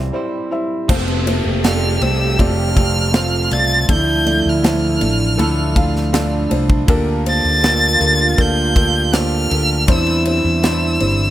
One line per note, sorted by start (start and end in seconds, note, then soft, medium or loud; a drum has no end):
0.00 0.14 C3 medium
0.00 0.14 E3 medium
0.00 0.12 G3 medium
0.00 0.14 C4 medium
0.00 0.13 E4 loud
0.00 0.14 E4 medium
0.00 0.14 G4 medium
0.00 0.14 C5 loud
0.00 0.15 C5 medium
0.00 0.14 D5 medium
0.00 0.52 E5 loud
0.00 noise sweep medium
0.13 0.88 G3 medium
0.13 0.89 C4 medium
0.13 0.49 E4 medium
0.13 0.89 E4 medium
0.13 0.49 G4 medium
0.13 0.49 C5 medium
0.13 0.90 C5 medium
0.13 0.49 D5 medium
0.51 0.87 E4 medium
0.51 0.87 G4 medium
0.51 0.87 C5 medium
0.51 0.87 E5 medium
0.88 1.41 F1 loud
0.88 1.63 F3 medium
0.88 1.24 A3 loud
0.88 1.63 A3 medium
0.88 1.24 C4 loud
0.88 1.63 C4 loud
0.88 1.25 F4 medium
0.88 1.65 F4 loud
0.88 3.09 G4 loud
0.88 1.25 A4 loud
0.88 1.65 A4 medium
0.88 1.25 C5 loud
0.88 kick loud
0.88 crash loud
0.88 downlifter medium
1.08 ride soft
1.26 1.62 A3 loud
1.26 1.62 C4 medium
1.26 1.62 F4 medium
1.26 1.62 A4 medium
1.26 1.62 C5 loud
1.26 ride medium
1.45 1.97 F1 medium
1.64 3.13 F3 medium
1.64 2.38 A3 medium
1.64 1.99 A3 medium
1.64 2.00 C4 medium
1.64 2.38 C4 medium
1.64 2.00 F4 medium
1.64 2.40 F4 medium
1.64 2.00 A4 medium
1.64 2.40 A4 medium
1.64 2.00 D5 medium
1.64 2.03 F6 medium
1.64 snare loud
1.64 ride medium
2.01 2.36 C2 loud
2.01 2.37 A3 medium
2.01 2.37 C4 medium
2.01 2.37 F4 medium
2.01 2.37 A4 medium
2.01 2.37 C5 medium
2.01 2.42 E6 medium
2.01 ride medium
2.38 3.48 F1 loud
2.38 2.76 A3 medium
2.38 2.74 A3 medium
2.38 2.74 C4 medium
2.38 2.77 C4 medium
2.38 2.75 F4 medium
2.38 2.76 F4 medium
2.38 2.75 A4 medium
2.38 2.75 D5 loud
2.38 3.54 F6 loud
2.38 kick medium
2.38 ride medium
2.76 3.11 A3 medium
2.76 3.11 C4 medium
2.76 3.13 C4 soft
2.76 3.12 F4 medium
2.76 3.14 F4 medium
2.76 3.14 A4 medium
2.76 3.12 A4 medium
2.76 3.12 D5 medium
2.76 kick medium
2.76 ride medium
3.13 3.51 F3 medium
3.13 3.49 A3 medium
3.13 3.51 A3 medium
3.13 3.49 C4 medium
3.13 3.52 C4 medium
3.13 3.49 F4 medium
3.13 3.89 F4 loud
3.13 3.51 F4 medium
3.13 3.49 A4 medium
3.13 3.50 A4 medium
3.13 3.49 C5 medium
3.13 snare loud
3.13 ride medium
3.51 3.86 C2 medium
3.51 3.87 A3 medium
3.51 3.87 C4 medium
3.51 3.89 C4 medium
3.51 3.87 F4 medium
3.51 3.89 F4 medium
3.51 3.89 A4 medium
3.51 3.87 A4 medium
3.51 3.87 D5 medium
3.51 3.90 A6 loud
3.51 ride medium
3.88 4.41 D2 loud
3.88 4.63 D3 medium
3.88 4.97 D3 medium
3.88 4.24 F3 medium
3.88 4.24 A3 medium
3.88 4.63 A3 medium
3.88 4.24 D4 medium
3.88 4.64 D4 medium
3.88 5.86 E4 loud
3.88 4.25 A4 medium
3.88 4.64 A4 medium
3.88 4.25 D5 medium
3.88 4.50 G6 loud
3.88 kick loud
3.88 ride loud
4.25 4.62 F3 medium
4.25 4.61 A3 medium
4.25 4.61 D4 medium
4.25 4.62 A4 medium
4.25 4.62 D5 medium
4.25 ride medium
4.46 4.98 D2 medium
4.46 6.53 F6 medium
4.63 6.13 D3 medium
4.63 4.99 F3 medium
4.63 4.98 A3 medium
4.63 5.37 A3 medium
4.63 4.98 D4 medium
4.63 5.38 D4 medium
4.63 4.99 A4 medium
4.63 5.40 A4 medium
4.63 5.00 C5 medium
4.63 snare loud
4.63 ride medium
5.00 5.36 A1 medium
5.00 5.36 F3 medium
5.00 5.36 A3 medium
5.00 5.36 D4 medium
5.00 5.37 A4 medium
5.00 5.37 D5 medium
5.00 ride medium
5.37 6.47 D2 loud
5.37 5.74 F3 loud
5.37 5.76 A3 medium
5.37 5.73 A3 loud
5.37 5.74 D4 loud
5.37 5.76 D4 medium
5.37 5.75 E4 loud
5.37 5.74 A4 loud
5.37 5.74 A4 medium
5.37 ride medium
5.75 6.11 A3 medium
5.75 6.11 D4 medium
5.75 6.13 D4 medium
5.75 6.11 F4 medium
5.75 6.13 F4 medium
5.75 6.13 A4 medium
5.75 6.12 A4 medium
5.75 6.12 F5 medium
5.75 kick medium
5.75 ride medium
5.96 snare soft
6.12 6.51 D3 medium
6.12 6.49 A3 loud
6.12 6.51 A3 medium
6.12 6.84 D4 medium
6.12 6.49 D4 medium
6.12 6.51 D4 loud
6.12 6.49 F4 medium
6.12 6.50 F4 loud
6.12 6.49 A4 medium
6.12 6.48 A4 loud
6.12 6.49 D5 loud
6.12 snare loud
6.12 ride medium
6.50 6.86 C2 medium
6.50 6.86 A3 medium
6.50 6.87 D4 medium
6.50 6.87 F4 medium
6.50 6.89 F4 medium
6.50 6.88 A4 medium
6.50 6.87 A4 medium
6.50 6.87 C5 loud
6.50 ride medium
6.70 kick medium
6.87 7.41 D2 loud
6.87 7.62 D3 medium
6.87 7.97 D3 medium
6.87 7.23 A#3 loud
6.87 7.62 A#3 loud
6.87 7.24 D4 loud
6.87 7.63 D4 loud
6.87 9.84 F4 loud
6.87 7.24 G4 loud
6.87 7.64 G4 medium
6.87 7.25 A4 loud
6.87 7.63 A4 loud
6.87 7.25 A#4 loud
6.87 kick loud
6.87 ride medium
7.25 7.60 A#3 medium
7.25 7.61 D4 medium
7.25 7.61 G4 medium
7.25 7.61 A4 medium
7.25 7.62 C5 medium
7.25 8.42 A6 loud
7.25 ride medium
7.44 7.97 D2 medium
7.62 9.12 D3 medium
7.62 7.98 A#3 medium
7.62 8.36 A#3 medium
7.62 7.98 D4 medium
7.62 8.38 D4 medium
7.62 7.99 G4 medium
7.62 8.38 G4 medium
7.62 7.99 A4 medium
7.62 8.39 A4 medium
7.62 7.99 A#4 medium
7.62 snare loud
7.62 ride medium
7.99 8.36 D2 medium
7.99 8.35 A#3 medium
7.99 8.36 D4 medium
7.99 8.36 G4 medium
7.99 8.36 A4 medium
7.99 8.37 A#4 medium
7.99 ride medium
8.37 9.47 D2 medium
8.37 8.73 A#3 loud
8.37 8.76 A#3 medium
8.37 8.74 D4 medium
8.37 8.76 D4 medium
8.37 8.74 G4 medium
8.37 8.75 G4 medium
8.37 8.74 A4 medium
8.37 8.73 A4 medium
8.37 8.74 A#4 loud
8.37 9.16 G6 loud
8.37 kick medium
8.37 ride medium
8.74 9.11 A#3 medium
8.74 9.12 D4 medium
8.74 9.12 D4 soft
8.74 9.13 G4 soft
8.74 9.12 G4 medium
8.74 9.13 A4 medium
8.74 9.12 A4 medium
8.74 9.12 A#4 medium
8.74 kick medium
8.74 ride medium
9.13 9.51 D3 medium
9.13 9.49 A#3 medium
9.13 9.51 A#3 medium
9.13 9.49 D4 medium
9.13 9.51 D4 medium
9.13 9.49 G4 medium
9.13 9.50 G4 medium
9.13 9.50 A4 medium
9.13 9.48 A4 medium
9.13 9.49 C5 medium
9.13 9.93 F6 loud
9.13 snare loud
9.13 ride medium
9.50 9.86 D2 medium
9.50 9.87 A#3 medium
9.50 9.87 D4 medium
9.50 9.88 G4 medium
9.50 9.87 G4 medium
9.50 9.88 A4 medium
9.50 9.87 A4 medium
9.50 9.87 A#4 medium
9.50 ride medium
9.87 10.41 E2 medium
9.87 10.62 E3 medium
9.87 10.97 E3 medium
9.87 10.62 G3 medium
9.87 10.24 C4 medium
9.87 10.63 D4 medium
9.87 10.24 D4 medium
9.87 11.30 E4 loud
9.87 10.24 E4 medium
9.87 10.63 E4 medium
9.87 10.25 G4 medium
9.87 10.64 C5 medium
9.87 10.25 C5 loud
9.87 kick loud
9.87 ride loud
9.92 10.28 E6 medium
10.07 ride soft
10.25 10.61 C4 medium
10.25 10.61 D4 medium
10.25 10.62 E4 medium
10.25 10.62 G4 medium
10.25 10.62 C5 medium
10.25 11.30 E6 medium
10.25 ride medium
10.45 10.97 E2 medium
10.62 11.30 E3 medium
10.62 11.30 G3 medium
10.62 10.98 C4 medium
10.62 10.99 D4 medium
10.62 11.30 D4 medium
10.62 10.99 E4 medium
10.62 11.30 E4 medium
10.62 10.99 G4 medium
10.62 10.99 C5 medium
10.62 11.30 C5 medium
10.62 snare loud
10.62 ride medium
11.00 11.30 G1 loud
11.00 11.30 C4 medium
11.00 11.30 D4 medium
11.00 11.30 E4 medium
11.00 11.30 G4 medium
11.00 11.30 C5 medium
11.00 ride medium